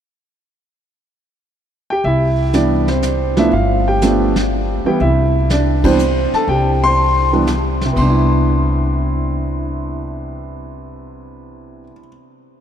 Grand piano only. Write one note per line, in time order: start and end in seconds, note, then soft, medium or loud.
1.90 2.05 G4 medium
1.90 2.04 G5 medium
2.05 2.52 E4 medium
2.05 2.50 E5 medium
2.54 2.84 E3 medium
2.54 2.84 G3 soft
2.54 2.84 B3 medium
2.54 2.85 D4 medium
2.54 2.86 D5 medium
2.89 3.35 C4 medium
2.89 3.39 C5 medium
3.37 3.51 F3 medium
3.37 3.51 A3 medium
3.37 3.51 B3 medium
3.37 3.51 D4 medium
3.37 3.54 E5 medium
3.41 3.53 E4 medium
3.53 3.85 F4 medium
3.53 3.84 F5 medium
3.88 4.34 G4 medium
3.88 4.33 G5 medium
4.02 4.33 F3 medium
4.02 4.33 A3 medium
4.02 4.33 B3 medium
4.02 4.33 D4 medium
4.86 4.99 E3 medium
4.86 4.99 G3 medium
4.86 5.00 B3 medium
4.86 5.00 E4 medium
4.86 5.01 G4 medium
4.86 5.01 G5 medium
5.01 5.48 E4 medium
5.01 5.52 E5 medium
5.51 5.83 D4 medium
5.51 5.85 D5 medium
5.84 5.98 E3 medium
5.84 5.98 G3 medium
5.84 5.98 B3 medium
5.84 6.31 C4 medium
5.84 5.98 D4 medium
5.84 6.30 C5 medium
6.34 6.49 A4 medium
6.34 6.50 A5 medium
6.49 6.82 G4 medium
6.49 6.84 G5 medium
6.84 7.30 C5 medium
6.84 7.29 C6 loud
7.33 7.46 E3 medium
7.33 7.46 G3 medium
7.33 7.46 B3 medium
7.33 7.47 D4 medium
7.85 11.83 C3 medium
7.93 11.91 B3 medium
7.98 11.99 D4 medium
7.98 11.92 C6 medium
8.10 12.08 E4 medium